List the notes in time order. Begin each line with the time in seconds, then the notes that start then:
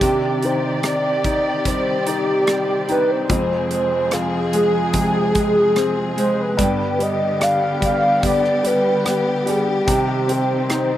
Already playing: G4
0.00 C3 D#3 C4 D4 G4 D5, kick, closed hi-hat
0.05 G4
0.43 D#4 C5, closed hi-hat
0.83 C3 D5, cross-stick, closed hi-hat
1.24 D#4 D5, kick, closed hi-hat
1.65 D#3 G3 C4 D4 G4 C5, kick, closed hi-hat
2.06 D#4 G4, closed hi-hat
2.47 G3, cross-stick, closed hi-hat
2.88 C4 D4 D#4 G4, closed hi-hat
2.92 B4
3.11 C5
3.28 F2 C3 F3 G#3 G#4, kick, closed hi-hat
3.32 C4 G#4
3.71 G#3 C5, closed hi-hat
4.11 F4 G#4, cross-stick, closed hi-hat
4.53 G#3 G#4, closed hi-hat
4.93 C3 F3 G#3 C4 G#4, kick, closed hi-hat
5.35 G#3, kick, closed hi-hat
5.76 C4, cross-stick, closed hi-hat
6.16 F3 G#3 C4 G#4 C5, closed hi-hat
6.41 B4
6.57 G2 D3 G3 B3 G4, kick, closed hi-hat
6.62 G4
6.99 G3 D#5, closed hi-hat
7.40 D4 F5, cross-stick, closed hi-hat
7.80 G3, kick, closed hi-hat
7.85 F5
8.22 D3 G3 B3 D4 G4 D5, kick, closed hi-hat
8.44 cross-stick
8.64 G3 B4, closed hi-hat
9.05 B3, cross-stick, closed hi-hat
9.46 G3 B3 D4 G4 G#4, closed hi-hat
9.63 G#4
9.71 G4
9.87 C3 D#3 C4 D#4, kick, closed hi-hat
9.92 G4
10.28 C4 C5, closed hi-hat
10.69 D#4, cross-stick, closed hi-hat